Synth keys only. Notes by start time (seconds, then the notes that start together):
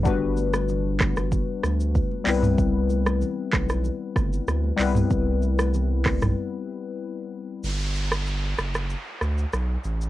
0.03 G3 B3 D4 F#4
0.08 B4
2.24 G3 B3 C4 E4
2.29 B4
4.77 G3 B3 C4 E4
4.82 B4